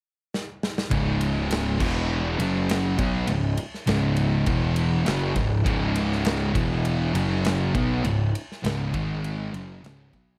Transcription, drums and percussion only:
0.34 snare medium
0.63 snare medium
0.78 snare medium
0.91 kick loud
0.91 ride loud
1.21 ride medium
1.51 snare loud
1.51 ride loud
1.80 kick loud
1.80 crash loud
2.40 ride medium
2.69 snare loud
2.69 ride loud
2.99 kick loud
2.99 ride medium
3.27 ride loud
3.57 ride medium
3.74 snare soft
3.87 snare loud
3.87 ride loud
4.16 ride medium
4.46 kick loud
4.46 ride medium
4.76 ride medium
5.06 snare loud
5.06 ride loud
5.36 kick medium
5.36 ride medium
5.66 kick loud
5.66 ride loud
5.96 ride medium
6.12 snare soft
6.25 snare loud
6.25 ride loud
6.55 kick loud
6.55 ride medium
6.85 ride loud
7.15 ride medium
7.45 snare loud
7.45 ride loud
7.75 kick loud
7.75 ride medium
8.04 ride medium
8.35 ride medium
8.52 snare soft
8.64 snare loud
8.64 ride loud
8.94 kick loud
8.94 ride medium
9.24 ride medium
9.54 ride medium
9.84 snare loud
9.84 ride loud
10.13 kick medium
10.13 ride medium

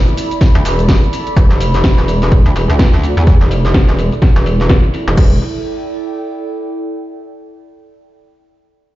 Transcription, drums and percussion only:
0.08 shaker soft
0.17 open hi-hat loud
0.17 shaker medium
0.31 closed hi-hat medium
0.31 shaker soft
0.41 kick loud
0.41 snare medium
0.41 closed hi-hat medium
0.41 shaker soft
0.55 closed hi-hat soft
0.55 shaker soft
0.65 open hi-hat loud
0.65 shaker medium
0.79 closed hi-hat medium
0.79 shaker soft
0.89 kick loud
0.89 snare loud
0.89 closed hi-hat medium
0.89 shaker soft
1.03 shaker soft
1.13 open hi-hat loud
1.13 shaker medium
1.27 closed hi-hat soft
1.27 shaker soft
1.37 kick loud
1.37 closed hi-hat medium
1.37 shaker soft
1.51 closed hi-hat soft
1.51 shaker soft
1.60 open hi-hat loud
1.60 shaker medium
1.74 closed hi-hat medium
1.74 shaker soft
1.84 kick loud
1.84 snare loud
1.84 closed hi-hat medium
1.84 shaker soft
1.99 shaker soft
2.08 open hi-hat loud
2.08 shaker medium
2.22 closed hi-hat medium
2.22 shaker soft
2.32 kick loud
2.32 closed hi-hat medium
2.32 shaker soft
2.46 closed hi-hat soft
2.46 shaker soft
2.56 open hi-hat loud
2.56 shaker medium
2.70 closed hi-hat medium
2.70 shaker soft
2.79 kick loud
2.79 snare loud
2.79 closed hi-hat medium
2.79 shaker soft
2.94 shaker soft
3.03 open hi-hat medium
3.03 shaker medium
3.17 closed hi-hat medium
3.17 shaker soft
3.27 kick loud
3.27 closed hi-hat medium
3.27 shaker soft
3.41 closed hi-hat soft
3.41 shaker soft
3.51 open hi-hat loud
3.51 shaker medium
3.65 closed hi-hat medium
3.65 shaker soft
3.74 kick loud
3.74 snare loud
3.74 closed hi-hat medium
3.74 shaker soft
3.89 shaker soft
3.98 open hi-hat loud
3.98 shaker medium
4.12 closed hi-hat medium
4.12 shaker soft
4.22 kick loud
4.22 snare medium
4.22 closed hi-hat medium
4.22 shaker soft
4.36 closed hi-hat soft
4.36 shaker soft
4.46 open hi-hat loud
4.46 shaker medium
4.60 closed hi-hat medium
4.60 shaker soft
4.69 kick loud
4.69 snare loud
4.69 closed hi-hat medium
4.69 shaker soft
4.84 closed hi-hat soft
4.84 shaker soft
4.94 open hi-hat loud
4.94 shaker medium
5.07 closed hi-hat medium
5.07 shaker soft
5.17 kick loud
5.17 crash medium

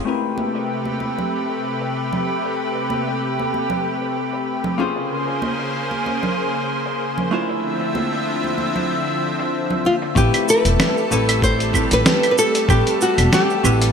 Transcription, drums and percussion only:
0.06 shaker soft
0.23 closed hi-hat soft
0.38 high conga medium
0.38 shaker medium
0.55 closed hi-hat soft
0.55 shaker soft
0.70 shaker soft
0.85 high conga medium
1.00 high conga medium
1.00 shaker medium
1.18 closed hi-hat medium
1.18 low conga medium
1.18 shaker soft
1.33 shaker soft
1.50 closed hi-hat soft
1.81 closed hi-hat medium
2.13 closed hi-hat soft
2.13 low conga medium
2.27 shaker medium
2.44 closed hi-hat medium
2.75 closed hi-hat soft
2.90 high conga medium
2.90 shaker medium
3.07 closed hi-hat soft
3.07 shaker soft
3.39 high conga medium
3.53 high conga medium
3.53 shaker medium
3.70 closed hi-hat medium
3.70 low conga medium
3.70 shaker soft
4.02 closed hi-hat soft
4.16 shaker medium
4.33 closed hi-hat soft
4.48 shaker soft
4.64 closed hi-hat soft
4.64 low conga medium
4.79 high conga medium
4.79 shaker medium
4.96 closed hi-hat soft
4.96 shaker soft
5.28 closed hi-hat soft
5.42 high conga medium
5.42 shaker medium
5.59 closed hi-hat soft
5.59 shaker soft
5.91 high conga soft
6.06 high conga medium
6.06 shaker medium
6.23 closed hi-hat medium
6.23 low conga medium
6.23 shaker soft
6.37 shaker soft
6.54 closed hi-hat soft
6.69 shaker medium
6.86 closed hi-hat soft
6.86 shaker soft
7.17 closed hi-hat soft
7.17 low conga medium
7.32 shaker medium
7.49 closed hi-hat soft
7.49 shaker soft
7.81 closed hi-hat soft
7.95 high conga medium
7.95 shaker medium
8.12 closed hi-hat soft
8.12 shaker soft
8.44 high conga soft
8.58 high conga medium
8.58 shaker medium
8.76 closed hi-hat medium
8.76 low conga medium
8.76 shaker soft
8.90 shaker soft
9.07 closed hi-hat soft
9.22 shaker medium
9.39 closed hi-hat soft
9.39 shaker soft
9.54 shaker soft
9.70 closed hi-hat soft
9.70 low conga medium
9.85 high conga medium
9.85 shaker medium
10.02 closed hi-hat soft
10.02 shaker soft
10.16 kick loud
10.16 shaker soft
10.34 closed hi-hat soft
10.34 claves medium
10.34 shaker soft
10.48 shaker medium
10.65 closed hi-hat medium
10.65 shaker soft
10.80 snare loud
10.80 claves medium
10.80 shaker soft
10.97 shaker soft
11.12 shaker medium
11.29 closed hi-hat medium
11.29 claves medium
11.29 shaker soft
11.42 kick loud
11.42 shaker soft
11.60 closed hi-hat soft
11.60 shaker soft
11.74 kick loud
11.74 claves medium
11.74 shaker medium
11.91 closed hi-hat medium
11.91 shaker soft
12.06 snare loud
12.06 shaker soft
12.23 closed hi-hat soft
12.23 claves medium
12.23 shaker soft
12.38 shaker medium
12.55 closed hi-hat medium
12.55 shaker soft
12.69 kick loud
12.69 claves medium
12.69 shaker soft
12.87 closed hi-hat soft
12.87 shaker soft
13.01 shaker medium
13.18 closed hi-hat medium
13.18 claves medium
13.18 shaker soft
13.33 snare loud
13.33 shaker soft
13.50 shaker soft
13.65 claves medium
13.65 shaker medium
13.82 closed hi-hat medium
13.82 shaker soft

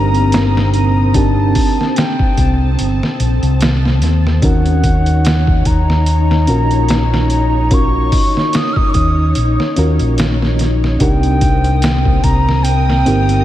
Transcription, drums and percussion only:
0.14 closed hi-hat soft
0.32 snare loud
0.32 closed hi-hat medium
0.57 snare medium
0.74 closed hi-hat medium
1.14 kick loud
1.14 closed hi-hat loud
1.55 kick medium
1.55 open hi-hat medium
1.81 snare soft
1.96 snare loud
1.96 closed hi-hat medium
2.19 kick loud
2.38 kick medium
2.38 closed hi-hat medium
2.79 closed hi-hat medium
3.03 snare medium
3.20 closed hi-hat medium
3.43 closed hi-hat soft
3.61 snare loud
3.61 closed hi-hat medium
3.85 snare soft
4.02 snare soft
4.02 closed hi-hat medium
4.27 snare soft
4.42 kick loud
4.42 closed hi-hat medium
4.66 closed hi-hat soft
4.84 kick loud
4.84 closed hi-hat medium
5.06 closed hi-hat soft
5.25 snare loud
5.25 closed hi-hat medium
5.47 kick loud
5.65 kick medium
5.65 closed hi-hat medium
5.90 snare soft
6.06 closed hi-hat medium
6.31 snare soft
6.47 closed hi-hat medium
6.71 closed hi-hat soft
6.88 snare loud
6.88 closed hi-hat medium
7.14 snare medium
7.30 closed hi-hat medium
7.71 kick loud
7.71 closed hi-hat medium
8.12 kick loud
8.12 open hi-hat medium
8.37 snare soft
8.53 snare loud
8.53 closed hi-hat medium
8.76 kick loud
8.94 kick loud
8.94 closed hi-hat medium
9.35 closed hi-hat loud
9.60 snare soft
9.76 closed hi-hat medium
9.99 closed hi-hat soft
10.18 snare loud
10.18 closed hi-hat medium
10.42 snare soft
10.59 snare soft
10.59 closed hi-hat medium
10.84 snare soft
11.00 kick loud
11.00 closed hi-hat medium
11.23 closed hi-hat soft
11.41 kick loud
11.41 closed hi-hat medium
11.64 closed hi-hat soft
11.82 snare loud
11.82 closed hi-hat medium
12.05 kick loud
12.24 kick loud
12.24 closed hi-hat medium
12.49 snare soft
12.65 closed hi-hat loud
12.90 snare soft
13.06 closed hi-hat medium
13.29 closed hi-hat soft

